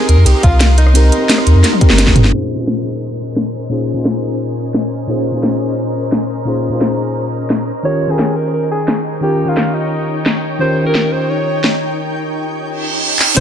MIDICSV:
0, 0, Header, 1, 9, 480
1, 0, Start_track
1, 0, Tempo, 344828
1, 1324, Time_signature, 4, 2, 24, 8
1, 18654, End_track
2, 0, Start_track
2, 0, Title_t, "Ambient pad"
2, 0, Program_c, 0, 92
2, 0, Note_on_c, 0, 70, 85
2, 0, Note_on_c, 0, 75, 78
2, 0, Note_on_c, 0, 84, 92
2, 3187, Note_off_c, 0, 84, 0
2, 3188, Note_off_c, 0, 70, 0
2, 3188, Note_off_c, 0, 75, 0
2, 3243, Note_on_c, 0, 70, 76
2, 3244, Note_on_c, 0, 61, 82
2, 3244, Note_on_c, 0, 75, 73
2, 3244, Note_on_c, 0, 80, 90
2, 3245, Note_on_c, 0, 72, 74
2, 7046, Note_off_c, 0, 80, 0
2, 7085, Note_on_c, 0, 82, 90
2, 10628, Note_off_c, 0, 61, 0
2, 10628, Note_off_c, 0, 70, 0
2, 10629, Note_off_c, 0, 72, 0
2, 10629, Note_off_c, 0, 75, 0
2, 10649, Note_off_c, 0, 82, 0
2, 10683, Note_on_c, 0, 63, 81
2, 10683, Note_on_c, 0, 73, 74
2, 10683, Note_on_c, 0, 79, 88
2, 18308, Note_off_c, 0, 63, 0
2, 18308, Note_off_c, 0, 79, 0
2, 18548, Note_off_c, 0, 73, 0
2, 18607, Note_on_c, 0, 68, 84
2, 18607, Note_on_c, 0, 75, 77
2, 18609, Note_on_c, 0, 84, 94
2, 18610, Note_on_c, 0, 61, 77
2, 18654, Note_off_c, 0, 61, 0
2, 18654, Note_off_c, 0, 68, 0
2, 18654, Note_off_c, 0, 75, 0
2, 18654, Note_off_c, 0, 84, 0
2, 18654, End_track
3, 0, Start_track
3, 0, Title_t, "Alto saxophone"
3, 0, Program_c, 1, 65
3, 118, Note_on_c, 1, 70, 96
3, 359, Note_on_c, 1, 67, 98
3, 380, Note_off_c, 1, 70, 0
3, 596, Note_off_c, 1, 67, 0
3, 604, Note_on_c, 1, 65, 97
3, 1050, Note_off_c, 1, 65, 0
3, 1082, Note_on_c, 1, 63, 92
3, 2948, Note_off_c, 1, 63, 0
3, 10926, Note_on_c, 1, 73, 114
3, 11287, Note_on_c, 1, 68, 100
3, 11308, Note_off_c, 1, 73, 0
3, 11645, Note_on_c, 1, 70, 92
3, 11666, Note_off_c, 1, 68, 0
3, 11875, Note_off_c, 1, 70, 0
3, 11883, Note_on_c, 1, 70, 97
3, 12107, Note_off_c, 1, 70, 0
3, 12128, Note_on_c, 1, 68, 91
3, 12573, Note_off_c, 1, 68, 0
3, 12844, Note_on_c, 1, 67, 100
3, 13204, Note_on_c, 1, 65, 90
3, 13225, Note_off_c, 1, 67, 0
3, 13563, Note_on_c, 1, 63, 78
3, 13584, Note_off_c, 1, 65, 0
3, 14284, Note_off_c, 1, 63, 0
3, 14761, Note_on_c, 1, 72, 106
3, 15098, Note_off_c, 1, 72, 0
3, 15122, Note_on_c, 1, 70, 94
3, 15482, Note_on_c, 1, 72, 96
3, 15503, Note_off_c, 1, 70, 0
3, 15723, Note_on_c, 1, 73, 105
3, 15744, Note_off_c, 1, 72, 0
3, 16684, Note_off_c, 1, 73, 0
3, 18607, Note_on_c, 1, 72, 121
3, 18654, Note_off_c, 1, 72, 0
3, 18654, End_track
4, 0, Start_track
4, 0, Title_t, "FM electric piano"
4, 0, Program_c, 2, 5
4, 0, Control_c, 2, 64, 127
4, 0, Note_on_c, 2, 60, 92
4, 0, Note_on_c, 2, 63, 87
4, 0, Note_on_c, 2, 67, 89
4, 0, Note_on_c, 2, 70, 106
4, 1273, Note_off_c, 2, 60, 0
4, 1287, Note_off_c, 2, 63, 0
4, 1301, Note_on_c, 2, 60, 102
4, 1302, Note_off_c, 2, 67, 0
4, 1315, Note_off_c, 2, 70, 0
4, 1316, Note_on_c, 2, 63, 89
4, 1329, Note_on_c, 2, 67, 91
4, 1343, Note_on_c, 2, 70, 110
4, 1625, Note_off_c, 2, 60, 0
4, 1642, Note_on_c, 2, 60, 93
4, 1652, Note_off_c, 2, 63, 0
4, 1658, Note_off_c, 2, 67, 0
4, 1665, Note_off_c, 2, 70, 0
4, 1670, Note_on_c, 2, 63, 86
4, 1699, Note_on_c, 2, 67, 86
4, 1725, Note_on_c, 2, 70, 104
4, 2479, Note_off_c, 2, 60, 0
4, 2493, Note_off_c, 2, 63, 0
4, 2503, Note_on_c, 2, 60, 95
4, 2507, Note_off_c, 2, 67, 0
4, 2517, Note_on_c, 2, 63, 87
4, 2520, Note_off_c, 2, 70, 0
4, 2531, Note_on_c, 2, 67, 89
4, 2544, Note_on_c, 2, 70, 104
4, 2845, Note_off_c, 2, 60, 0
4, 2852, Note_off_c, 2, 63, 0
4, 2859, Note_off_c, 2, 67, 0
4, 2864, Note_on_c, 2, 60, 91
4, 2866, Note_off_c, 2, 70, 0
4, 2878, Note_on_c, 2, 63, 85
4, 2893, Note_on_c, 2, 67, 85
4, 2906, Note_on_c, 2, 70, 102
4, 3205, Note_off_c, 2, 60, 0
4, 3212, Note_off_c, 2, 63, 0
4, 3219, Note_off_c, 2, 67, 0
4, 3221, Note_on_c, 2, 46, 88
4, 3226, Note_off_c, 2, 70, 0
4, 3229, Note_on_c, 2, 61, 80
4, 3238, Note_on_c, 2, 63, 83
4, 3247, Note_on_c, 2, 65, 81
4, 3255, Note_on_c, 2, 68, 81
4, 3265, Control_c, 2, 64, 0
4, 3533, Control_c, 2, 64, 127
4, 3544, Note_off_c, 2, 46, 0
4, 3561, Note_on_c, 2, 46, 83
4, 3562, Note_off_c, 2, 61, 0
4, 3573, Note_off_c, 2, 63, 0
4, 3577, Note_off_c, 2, 65, 0
4, 3578, Note_on_c, 2, 61, 77
4, 3581, Note_off_c, 2, 68, 0
4, 3594, Note_on_c, 2, 63, 77
4, 3612, Note_on_c, 2, 65, 76
4, 3628, Note_on_c, 2, 68, 77
4, 3644, Note_on_c, 2, 72, 93
4, 5114, Note_off_c, 2, 46, 0
4, 5122, Note_off_c, 2, 61, 0
4, 5130, Note_off_c, 2, 63, 0
4, 5139, Note_off_c, 2, 65, 0
4, 5141, Note_on_c, 2, 46, 90
4, 5147, Note_off_c, 2, 68, 0
4, 5150, Note_on_c, 2, 61, 81
4, 5155, Note_off_c, 2, 72, 0
4, 5159, Note_on_c, 2, 63, 80
4, 5167, Note_on_c, 2, 65, 82
4, 5176, Note_on_c, 2, 68, 83
4, 5184, Note_on_c, 2, 72, 98
4, 5465, Note_off_c, 2, 46, 0
4, 5481, Note_off_c, 2, 61, 0
4, 5482, Note_on_c, 2, 46, 85
4, 5493, Note_off_c, 2, 63, 0
4, 5498, Note_off_c, 2, 65, 0
4, 5498, Note_on_c, 2, 61, 76
4, 5502, Note_off_c, 2, 68, 0
4, 5506, Note_off_c, 2, 72, 0
4, 5515, Note_on_c, 2, 63, 75
4, 5531, Note_on_c, 2, 65, 78
4, 5549, Note_on_c, 2, 68, 80
4, 5565, Note_on_c, 2, 72, 92
4, 7034, Note_off_c, 2, 46, 0
4, 7042, Note_off_c, 2, 61, 0
4, 7050, Note_off_c, 2, 63, 0
4, 7058, Note_off_c, 2, 65, 0
4, 7062, Note_on_c, 2, 46, 89
4, 7067, Note_off_c, 2, 68, 0
4, 7071, Note_on_c, 2, 61, 81
4, 7076, Note_off_c, 2, 72, 0
4, 7079, Note_on_c, 2, 63, 82
4, 7087, Note_on_c, 2, 65, 83
4, 7096, Note_on_c, 2, 68, 80
4, 7105, Note_on_c, 2, 72, 97
4, 7386, Note_off_c, 2, 46, 0
4, 7403, Note_off_c, 2, 61, 0
4, 7403, Note_on_c, 2, 46, 85
4, 7414, Note_off_c, 2, 63, 0
4, 7417, Note_off_c, 2, 65, 0
4, 7419, Note_on_c, 2, 61, 78
4, 7422, Note_off_c, 2, 68, 0
4, 7426, Note_off_c, 2, 72, 0
4, 7436, Note_on_c, 2, 63, 80
4, 7453, Note_on_c, 2, 65, 77
4, 7470, Note_on_c, 2, 68, 79
4, 7487, Note_on_c, 2, 72, 91
4, 8954, Note_off_c, 2, 46, 0
4, 8963, Note_off_c, 2, 61, 0
4, 8971, Note_off_c, 2, 63, 0
4, 8979, Note_off_c, 2, 65, 0
4, 8983, Note_on_c, 2, 46, 91
4, 8988, Note_off_c, 2, 68, 0
4, 8991, Note_on_c, 2, 61, 84
4, 8996, Note_off_c, 2, 72, 0
4, 8999, Note_on_c, 2, 63, 80
4, 9008, Note_on_c, 2, 65, 82
4, 9016, Note_on_c, 2, 68, 81
4, 9025, Note_on_c, 2, 72, 98
4, 9305, Note_off_c, 2, 46, 0
4, 9320, Note_off_c, 2, 61, 0
4, 9322, Note_on_c, 2, 46, 85
4, 9333, Note_off_c, 2, 63, 0
4, 9337, Note_on_c, 2, 61, 79
4, 9338, Note_off_c, 2, 65, 0
4, 9342, Note_off_c, 2, 68, 0
4, 9346, Note_off_c, 2, 72, 0
4, 9353, Note_on_c, 2, 63, 78
4, 9371, Note_on_c, 2, 65, 81
4, 9388, Note_on_c, 2, 68, 78
4, 9405, Note_on_c, 2, 72, 95
4, 10648, Note_off_c, 2, 46, 0
4, 10656, Note_off_c, 2, 61, 0
4, 10664, Note_off_c, 2, 63, 0
4, 10673, Note_off_c, 2, 65, 0
4, 10681, Note_off_c, 2, 68, 0
4, 10690, Note_off_c, 2, 72, 0
4, 10699, Control_c, 2, 64, 0
4, 10901, Note_on_c, 2, 51, 87
4, 10911, Note_on_c, 2, 61, 79
4, 10922, Note_on_c, 2, 65, 83
4, 10932, Note_on_c, 2, 67, 81
4, 10940, Control_c, 2, 64, 127
4, 10942, Note_on_c, 2, 70, 95
4, 11220, Note_off_c, 2, 51, 0
4, 11237, Note_on_c, 2, 51, 87
4, 11242, Note_off_c, 2, 61, 0
4, 11255, Note_off_c, 2, 65, 0
4, 11259, Note_on_c, 2, 61, 79
4, 11260, Note_off_c, 2, 67, 0
4, 11265, Note_off_c, 2, 70, 0
4, 11280, Note_on_c, 2, 65, 79
4, 11301, Note_on_c, 2, 79, 77
4, 11321, Note_on_c, 2, 70, 95
4, 12792, Note_off_c, 2, 51, 0
4, 12802, Note_off_c, 2, 61, 0
4, 12813, Note_off_c, 2, 65, 0
4, 12820, Note_on_c, 2, 51, 89
4, 12824, Note_off_c, 2, 79, 0
4, 12830, Note_on_c, 2, 61, 83
4, 12834, Note_off_c, 2, 70, 0
4, 12840, Note_on_c, 2, 65, 82
4, 12852, Note_on_c, 2, 67, 80
4, 12862, Note_on_c, 2, 70, 101
4, 13144, Note_off_c, 2, 51, 0
4, 13161, Note_on_c, 2, 51, 87
4, 13164, Note_off_c, 2, 61, 0
4, 13174, Note_off_c, 2, 65, 0
4, 13180, Note_off_c, 2, 67, 0
4, 13181, Note_on_c, 2, 61, 77
4, 13185, Note_off_c, 2, 70, 0
4, 13202, Note_on_c, 2, 65, 78
4, 13224, Note_on_c, 2, 67, 79
4, 13244, Note_on_c, 2, 70, 93
4, 14713, Note_off_c, 2, 51, 0
4, 14723, Note_off_c, 2, 61, 0
4, 14734, Note_off_c, 2, 65, 0
4, 14741, Note_on_c, 2, 51, 92
4, 14745, Note_off_c, 2, 67, 0
4, 14752, Note_on_c, 2, 61, 85
4, 14755, Note_off_c, 2, 70, 0
4, 14763, Note_on_c, 2, 65, 82
4, 14774, Note_on_c, 2, 67, 82
4, 14783, Note_on_c, 2, 70, 102
4, 15064, Note_off_c, 2, 51, 0
4, 15081, Note_on_c, 2, 51, 87
4, 15084, Note_off_c, 2, 61, 0
4, 15095, Note_off_c, 2, 65, 0
4, 15100, Note_on_c, 2, 61, 80
4, 15101, Note_off_c, 2, 67, 0
4, 15106, Note_off_c, 2, 70, 0
4, 15123, Note_on_c, 2, 65, 82
4, 15143, Note_on_c, 2, 67, 80
4, 15164, Note_on_c, 2, 70, 97
4, 16633, Note_off_c, 2, 51, 0
4, 16643, Note_off_c, 2, 61, 0
4, 16654, Note_off_c, 2, 65, 0
4, 16664, Note_off_c, 2, 67, 0
4, 16675, Note_off_c, 2, 70, 0
4, 18382, Control_c, 2, 64, 0
4, 18583, Note_on_c, 2, 61, 100
4, 18597, Note_on_c, 2, 63, 88
4, 18610, Note_on_c, 2, 68, 91
4, 18654, Note_off_c, 2, 61, 0
4, 18654, Note_off_c, 2, 63, 0
4, 18654, Note_off_c, 2, 68, 0
4, 18654, End_track
5, 0, Start_track
5, 0, Title_t, "Sub bass"
5, 0, Program_c, 3, 38
5, 125, Note_on_c, 3, 39, 104
5, 233, Note_off_c, 3, 39, 0
5, 247, Note_on_c, 3, 41, 105
5, 353, Note_off_c, 3, 41, 0
5, 366, Note_on_c, 3, 36, 89
5, 474, Note_off_c, 3, 36, 0
5, 604, Note_on_c, 3, 36, 94
5, 1545, Note_off_c, 3, 36, 0
5, 2044, Note_on_c, 3, 39, 105
5, 2153, Note_off_c, 3, 39, 0
5, 2165, Note_on_c, 3, 41, 108
5, 2272, Note_off_c, 3, 41, 0
5, 2645, Note_on_c, 3, 31, 102
5, 3225, Note_off_c, 3, 31, 0
5, 18605, Note_on_c, 3, 34, 102
5, 18654, Note_off_c, 3, 34, 0
5, 18654, End_track
6, 0, Start_track
6, 0, Title_t, "Downlifter"
6, 0, Program_c, 4, 103
6, 3243, Note_on_c, 4, 60, 67
6, 7084, Note_off_c, 4, 60, 0
6, 18654, End_track
7, 0, Start_track
7, 0, Title_t, "Reverse cymbal"
7, 0, Program_c, 5, 119
7, 17643, Note_on_c, 5, 60, 73
7, 18604, Note_off_c, 5, 60, 0
7, 18654, End_track
8, 0, Start_track
8, 0, Title_t, "Sub drop"
8, 0, Program_c, 6, 103
8, 18604, Note_on_c, 6, 60, 77
8, 18654, Note_off_c, 6, 60, 0
8, 18654, End_track
9, 0, Start_track
9, 0, Title_t, "Drums"
9, 122, Note_on_c, 9, 42, 71
9, 262, Note_off_c, 9, 42, 0
9, 363, Note_on_c, 9, 42, 96
9, 363, Note_on_c, 9, 51, 82
9, 502, Note_off_c, 9, 42, 0
9, 502, Note_off_c, 9, 51, 0
9, 602, Note_on_c, 9, 42, 71
9, 604, Note_on_c, 9, 36, 104
9, 742, Note_off_c, 9, 42, 0
9, 743, Note_off_c, 9, 36, 0
9, 843, Note_on_c, 9, 38, 118
9, 843, Note_on_c, 9, 42, 96
9, 843, Note_on_c, 9, 51, 81
9, 982, Note_off_c, 9, 38, 0
9, 982, Note_off_c, 9, 42, 0
9, 982, Note_off_c, 9, 51, 0
9, 1083, Note_on_c, 9, 42, 71
9, 1205, Note_on_c, 9, 37, 47
9, 1222, Note_off_c, 9, 42, 0
9, 1323, Note_on_c, 9, 42, 103
9, 1323, Note_on_c, 9, 51, 81
9, 1344, Note_off_c, 9, 37, 0
9, 1462, Note_off_c, 9, 42, 0
9, 1462, Note_off_c, 9, 51, 0
9, 1562, Note_on_c, 9, 42, 71
9, 1701, Note_off_c, 9, 42, 0
9, 1802, Note_on_c, 9, 38, 121
9, 1802, Note_on_c, 9, 42, 96
9, 1802, Note_on_c, 9, 51, 79
9, 1923, Note_on_c, 9, 37, 59
9, 1942, Note_off_c, 9, 38, 0
9, 1942, Note_off_c, 9, 42, 0
9, 1942, Note_off_c, 9, 51, 0
9, 2042, Note_on_c, 9, 42, 74
9, 2062, Note_off_c, 9, 37, 0
9, 2182, Note_off_c, 9, 42, 0
9, 2282, Note_on_c, 9, 38, 62
9, 2282, Note_on_c, 9, 42, 97
9, 2282, Note_on_c, 9, 51, 76
9, 2404, Note_on_c, 9, 48, 60
9, 2422, Note_off_c, 9, 38, 0
9, 2422, Note_off_c, 9, 42, 0
9, 2422, Note_off_c, 9, 51, 0
9, 2523, Note_on_c, 9, 42, 69
9, 2524, Note_on_c, 9, 36, 104
9, 2543, Note_off_c, 9, 48, 0
9, 2643, Note_on_c, 9, 38, 72
9, 2662, Note_off_c, 9, 42, 0
9, 2663, Note_off_c, 9, 36, 0
9, 2762, Note_off_c, 9, 38, 0
9, 2762, Note_on_c, 9, 38, 89
9, 2762, Note_on_c, 9, 42, 101
9, 2762, Note_on_c, 9, 51, 81
9, 2882, Note_off_c, 9, 38, 0
9, 2882, Note_on_c, 9, 38, 82
9, 2884, Note_on_c, 9, 36, 59
9, 2901, Note_off_c, 9, 42, 0
9, 2901, Note_off_c, 9, 51, 0
9, 3002, Note_on_c, 9, 42, 69
9, 3002, Note_on_c, 9, 45, 100
9, 3021, Note_off_c, 9, 38, 0
9, 3024, Note_off_c, 9, 36, 0
9, 3123, Note_on_c, 9, 38, 92
9, 3141, Note_off_c, 9, 42, 0
9, 3141, Note_off_c, 9, 45, 0
9, 3262, Note_off_c, 9, 38, 0
9, 3723, Note_on_c, 9, 38, 107
9, 3862, Note_off_c, 9, 38, 0
9, 4683, Note_on_c, 9, 38, 106
9, 4822, Note_off_c, 9, 38, 0
9, 5643, Note_on_c, 9, 38, 113
9, 5782, Note_off_c, 9, 38, 0
9, 6604, Note_on_c, 9, 38, 111
9, 6743, Note_off_c, 9, 38, 0
9, 7563, Note_on_c, 9, 38, 114
9, 7702, Note_off_c, 9, 38, 0
9, 8523, Note_on_c, 9, 38, 116
9, 8662, Note_off_c, 9, 38, 0
9, 9483, Note_on_c, 9, 38, 111
9, 9622, Note_off_c, 9, 38, 0
9, 10442, Note_on_c, 9, 38, 112
9, 10581, Note_off_c, 9, 38, 0
9, 11403, Note_on_c, 9, 38, 108
9, 11542, Note_off_c, 9, 38, 0
9, 12362, Note_on_c, 9, 38, 111
9, 12502, Note_off_c, 9, 38, 0
9, 13323, Note_on_c, 9, 38, 106
9, 13462, Note_off_c, 9, 38, 0
9, 14282, Note_on_c, 9, 38, 111
9, 14421, Note_off_c, 9, 38, 0
9, 15242, Note_on_c, 9, 38, 109
9, 15381, Note_off_c, 9, 38, 0
9, 16203, Note_on_c, 9, 38, 108
9, 16342, Note_off_c, 9, 38, 0
9, 18364, Note_on_c, 9, 39, 87
9, 18503, Note_off_c, 9, 39, 0
9, 18604, Note_on_c, 9, 42, 96
9, 18604, Note_on_c, 9, 49, 105
9, 18605, Note_on_c, 9, 36, 118
9, 18654, Note_off_c, 9, 36, 0
9, 18654, Note_off_c, 9, 42, 0
9, 18654, Note_off_c, 9, 49, 0
9, 18654, End_track
0, 0, End_of_file